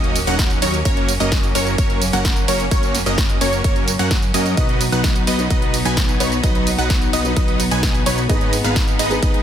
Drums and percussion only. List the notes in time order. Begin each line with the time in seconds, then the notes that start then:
0.04 closed hi-hat
0.16 open hi-hat, ride, tambourine
0.27 closed hi-hat, tambourine
0.39 kick, snare, closed hi-hat, ride, tambourine
0.50 closed hi-hat, tambourine
0.62 open hi-hat, ride, tambourine
0.74 closed hi-hat, tambourine
0.85 kick, closed hi-hat, ride, tambourine
0.97 closed hi-hat
1.09 open hi-hat, ride, tambourine
1.20 closed hi-hat, tambourine
1.32 kick, snare, closed hi-hat, ride, tambourine
1.44 closed hi-hat, tambourine
1.55 open hi-hat, ride, tambourine
1.67 closed hi-hat, tambourine
1.78 kick, closed hi-hat, ride, tambourine
1.90 closed hi-hat
2.02 open hi-hat, ride, tambourine
2.13 closed hi-hat, tambourine
2.25 kick, snare, closed hi-hat, ride, tambourine
2.36 closed hi-hat, tambourine
2.48 open hi-hat, ride, tambourine
2.60 closed hi-hat, tambourine
2.71 kick, closed hi-hat, ride, tambourine
2.83 closed hi-hat, tambourine
2.95 snare, open hi-hat, ride, tambourine
3.06 closed hi-hat, tambourine
3.18 kick, snare, closed hi-hat, ride, tambourine
3.29 closed hi-hat, tambourine
3.41 open hi-hat, ride, tambourine
3.53 closed hi-hat, tambourine
3.64 kick, closed hi-hat, ride, tambourine
3.76 closed hi-hat
3.88 open hi-hat, ride, tambourine
3.99 closed hi-hat, tambourine
4.11 kick, snare, closed hi-hat, ride, tambourine
4.22 closed hi-hat, tambourine
4.34 open hi-hat, ride, tambourine
4.46 closed hi-hat, tambourine
4.57 kick, closed hi-hat, ride, tambourine
4.69 closed hi-hat
4.81 open hi-hat, ride, tambourine
4.92 closed hi-hat, tambourine
5.04 kick, snare, closed hi-hat, ride, tambourine
5.16 closed hi-hat, tambourine
5.27 open hi-hat, ride, tambourine
5.39 closed hi-hat, tambourine
5.50 kick, closed hi-hat, ride, tambourine
5.62 closed hi-hat
5.74 open hi-hat, ride, tambourine
5.85 closed hi-hat, tambourine
5.97 kick, snare, closed hi-hat, ride, tambourine
6.09 closed hi-hat, tambourine
6.20 open hi-hat, ride, tambourine
6.32 closed hi-hat, tambourine
6.44 kick, closed hi-hat, ride, tambourine
6.55 closed hi-hat
6.67 open hi-hat, ride, tambourine
6.78 closed hi-hat, tambourine
6.90 kick, snare, closed hi-hat, ride, tambourine
7.02 closed hi-hat, tambourine
7.13 open hi-hat, ride, tambourine
7.25 closed hi-hat, tambourine
7.37 kick, closed hi-hat, ride, tambourine
7.48 closed hi-hat
7.60 open hi-hat, ride, tambourine
7.71 closed hi-hat, tambourine
7.83 kick, snare, closed hi-hat, ride, tambourine
7.95 closed hi-hat, tambourine
8.06 open hi-hat, ride, tambourine
8.18 closed hi-hat, tambourine
8.30 kick, closed hi-hat, ride, tambourine
8.41 closed hi-hat
8.53 open hi-hat, ride, tambourine
8.64 closed hi-hat, tambourine
8.76 kick, snare, closed hi-hat, ride, tambourine
8.88 closed hi-hat, tambourine
8.99 open hi-hat, ride, tambourine
9.11 closed hi-hat, tambourine
9.23 kick, closed hi-hat, ride, tambourine
9.34 closed hi-hat